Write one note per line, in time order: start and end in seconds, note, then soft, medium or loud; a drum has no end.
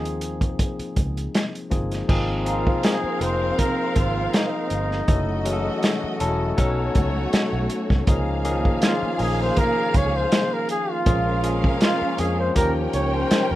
0.00 0.55 D#2 medium
0.00 1.70 F3 medium
0.00 1.70 A#3 medium
0.00 1.71 C4 medium
0.00 1.71 D#4 medium
0.00 1.35 G#4 medium
0.00 1.72 G#4 medium
0.05 closed hi-hat soft
0.21 closed hi-hat medium
0.41 kick medium
0.41 closed hi-hat soft
0.59 kick medium
0.59 closed hi-hat medium
0.79 muted fingered electric bass stroke soft
0.79 closed hi-hat soft
0.96 1.26 C#2 medium
0.96 kick medium
0.96 closed hi-hat medium
1.17 closed hi-hat soft
1.35 snare loud
1.35 closed hi-hat medium
1.55 closed hi-hat soft
1.70 2.01 G1 medium
1.70 1.98 F3 medium
1.70 1.98 A#3 medium
1.70 1.98 C4 medium
1.70 1.98 D#4 medium
1.70 1.99 G#4 medium
1.70 kick medium
1.70 closed hi-hat medium
1.92 snare soft
1.92 closed hi-hat soft
2.08 2.69 G#1 loud
2.08 2.36 F3 medium
2.08 2.36 A#3 medium
2.08 5.04 C4 medium
2.08 2.36 C4 medium
2.08 2.36 D#4 medium
2.08 2.36 G#4 medium
2.08 5.04 A#4 medium
2.08 5.04 F5 medium
2.08 kick loud
2.08 crash medium
2.45 2.99 F3 medium
2.45 3.00 A#3 medium
2.45 3.00 C4 medium
2.45 3.00 D#4 medium
2.45 2.86 F4 medium
2.45 3.00 G#4 medium
2.45 4.62 A#5 medium
2.45 closed hi-hat medium
2.67 kick medium
2.83 3.23 G#4 medium
2.83 snare medium
2.83 closed hi-hat medium
3.04 muted fingered electric bass stroke soft
3.20 3.51 F1 medium
3.20 4.26 F3 medium
3.20 4.26 A#3 medium
3.20 4.26 C4 medium
3.20 4.26 D#4 medium
3.20 4.27 G#4 medium
3.20 3.60 C5 loud
3.20 closed hi-hat medium
3.59 3.99 A#4 medium
3.59 kick medium
3.59 closed hi-hat medium
3.96 4.26 G#1 medium
3.96 4.35 F4 medium
3.96 kick medium
3.96 closed hi-hat medium
4.33 6.21 D#4 medium
4.33 snare loud
4.33 closed hi-hat medium
4.70 5.01 G1 medium
4.70 closed hi-hat medium
4.91 snare soft
5.07 5.68 F#1 medium
5.07 5.35 F#3 medium
5.07 6.55 A3 medium
5.07 5.35 A3 medium
5.07 5.36 C#4 medium
5.07 5.36 E4 medium
5.07 6.54 F#4 medium
5.07 5.36 A4 medium
5.07 6.54 D#5 medium
5.07 kick loud
5.07 closed hi-hat medium
5.45 6.00 E3 medium
5.45 5.99 F#3 medium
5.45 5.99 A3 medium
5.45 6.00 C#4 medium
5.45 5.53 G#4 medium
5.45 closed hi-hat medium
5.53 6.03 A4 medium
5.83 snare loud
5.83 closed hi-hat medium
6.04 muted fingered electric bass stroke soft
6.20 6.50 E1 medium
6.20 6.56 F#3 medium
6.20 6.58 A3 medium
6.20 6.56 C#4 medium
6.20 6.58 E4 medium
6.20 6.57 A4 medium
6.20 6.91 A5 medium
6.20 closed hi-hat medium
6.57 6.88 B1 medium
6.57 7.78 F#3 medium
6.57 8.04 A3 medium
6.57 7.78 B3 medium
6.57 7.78 C#4 medium
6.57 7.78 D#4 medium
6.57 8.04 F#4 medium
6.57 7.78 A4 medium
6.57 8.04 C#5 medium
6.57 kick medium
6.57 closed hi-hat medium
6.95 7.25 C#2 medium
6.95 kick medium
6.95 closed hi-hat medium
7.33 muted fingered electric bass stroke soft
7.33 snare loud
7.33 closed hi-hat medium
7.53 7.67 B1 medium
7.70 closed hi-hat medium
7.90 8.04 C2 medium
7.90 kick medium
7.90 snare soft
8.07 8.67 C#2 medium
8.07 8.35 F3 medium
8.07 11.02 A#3 medium
8.07 8.35 A#3 medium
8.07 8.35 C#4 medium
8.07 8.35 D#4 medium
8.07 11.02 G#4 medium
8.07 8.35 G#4 medium
8.07 11.02 F5 medium
8.07 kick loud
8.07 closed hi-hat medium
8.44 8.52 D#3 medium
8.44 8.98 A#3 medium
8.44 8.98 C#4 medium
8.44 8.99 D#4 medium
8.44 8.99 G#4 medium
8.44 closed hi-hat medium
8.51 9.02 F3 medium
8.65 kick medium
8.82 snare loud
8.82 closed hi-hat medium
8.86 9.19 F4 medium
9.03 muted fingered electric bass stroke soft
9.18 9.49 A#1 medium
9.18 10.24 F3 medium
9.18 10.25 A#3 medium
9.18 10.25 C#4 medium
9.18 10.25 D#4 medium
9.18 10.25 G#4 medium
9.18 open hi-hat medium
9.22 9.43 G#4 medium
9.42 9.60 C5 loud
9.57 9.98 A#4 loud
9.57 kick medium
9.57 closed hi-hat medium
9.94 10.24 C#2 medium
9.94 10.18 C#5 medium
9.94 kick medium
9.94 closed hi-hat medium
10.16 10.55 C5 loud
10.32 snare loud
10.32 closed hi-hat medium
10.54 10.70 A#4 medium
10.69 10.93 G#4 medium
10.69 closed hi-hat medium
10.91 11.65 F4 medium
11.06 11.66 A#1 medium
11.06 11.33 F3 medium
11.06 11.33 G#3 medium
11.06 11.34 A#3 medium
11.06 12.53 C#4 medium
11.06 11.34 C#4 medium
11.06 11.34 G#4 medium
11.06 12.53 A#4 medium
11.06 12.53 F5 medium
11.06 12.90 C6 medium
11.06 kick loud
11.06 closed hi-hat medium
11.43 11.97 F3 medium
11.43 11.97 G#3 medium
11.43 11.97 A#3 medium
11.43 11.98 C#4 medium
11.43 11.98 G#4 medium
11.43 closed hi-hat medium
11.64 kick medium
11.81 12.21 F4 medium
11.81 snare loud
11.81 closed hi-hat medium
12.02 muted fingered electric bass stroke soft
12.17 12.49 F2 medium
12.17 12.54 F3 medium
12.17 12.56 G#3 medium
12.17 12.54 A#3 medium
12.17 12.54 C#4 medium
12.17 12.56 G#4 medium
12.17 12.39 G#4 medium
12.17 closed hi-hat medium
12.40 12.55 C5 medium
12.55 12.86 D#2 medium
12.55 13.55 F3 medium
12.55 13.55 A#3 medium
12.55 13.55 C#4 medium
12.55 13.55 D#4 medium
12.55 13.55 G4 medium
12.55 13.55 A#4 medium
12.55 12.73 A#4 medium
12.55 13.55 G5 medium
12.55 kick medium
12.55 closed hi-hat medium
12.93 13.23 C#2 medium
12.93 13.15 C#5 medium
12.93 closed hi-hat medium
13.14 13.53 C5 medium
13.31 muted fingered electric bass stroke soft
13.31 snare loud
13.31 closed hi-hat medium
13.51 13.55 F2 medium
13.51 13.55 A#4 medium